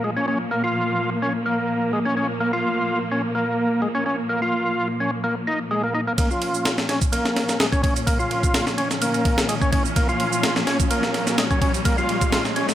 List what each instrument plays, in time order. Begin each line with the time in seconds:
Already playing: string section A#2 F3 A#3
0.04 tonewheel organ G#3
0.17 tonewheel organ C#4
0.28 tonewheel organ C#4
0.51 tonewheel organ A#3
0.64 tonewheel organ F4
1.22 tonewheel organ C#4
1.46 tonewheel organ A#3
1.93 tonewheel organ G#3
2.05 tonewheel organ C#4
2.17 tonewheel organ C#4
2.40 tonewheel organ A#3
2.53 tonewheel organ F4
3.12 tonewheel organ C#4
3.35 tonewheel organ A#3
3.82 tonewheel organ G#3
3.95 tonewheel organ C#4
4.06 tonewheel organ C#4
4.29 tonewheel organ A#3
4.42 tonewheel organ F4
5.00 tonewheel organ C#4
5.24 tonewheel organ A#3
5.47 tonewheel organ D#4
5.71 tonewheel organ G#3
5.84 tonewheel organ A#3
5.95 tonewheel organ D#4
6.07 tonewheel organ A#3
6.18 string section A#2 F3 C#4, tonewheel organ A#3, kick, ride, riser, shaker
6.31 tonewheel organ F4, shaker
6.42 ride
6.54 shaker
6.65 snare, ride, shaker
6.78 snare, shaker
6.89 tonewheel organ C#4, snare, ride
7.01 kick, shaker
7.12 tonewheel organ A#3, ride, shaker
7.25 snare, shaker
7.36 snare, ride
7.49 snare, shaker
7.60 tonewheel organ G#3, snare, ride, shaker
7.72 tonewheel organ C#4, kick, shaker
7.83 tonewheel organ C#4, kick, ride
7.96 ride, shaker
8.07 tonewheel organ A#3, kick, ride, shaker
8.19 tonewheel organ F4, shaker
8.31 ride
8.43 kick, shaker
8.54 snare, ride, shaker
8.67 snare, shaker
8.78 tonewheel organ C#4, ride
8.91 snare, shaker
9.02 tonewheel organ A#3, ride, shaker
9.14 ride, shaker
9.25 kick, ride
9.38 snare, shaker
9.49 tonewheel organ G#3, ride, shaker
9.62 tonewheel organ C#4, kick, shaker
9.72 tonewheel organ C#4, kick, ride
9.85 shaker
9.96 tonewheel organ A#3, kick, ride, shaker
10.09 tonewheel organ F4, shaker
10.20 ride
10.33 shaker
10.43 snare, ride, shaker
10.56 snare, shaker
10.67 tonewheel organ C#4, snare, ride
10.80 kick, shaker
10.91 tonewheel organ A#3, ride, shaker
11.03 snare, shaker
11.14 snare, ride
11.27 snare, shaker
11.38 tonewheel organ G#3, snare, ride, shaker
11.51 tonewheel organ C#4, kick, shaker
11.62 tonewheel organ C#4, kick, ride
11.74 ride, shaker
11.85 tonewheel organ A#3, kick, ride, shaker
11.98 tonewheel organ F4, shaker
12.09 ride
12.21 kick, shaker
12.32 snare, ride, shaker
12.45 snare, shaker
12.56 tonewheel organ C#4, ride
12.69 snare, shaker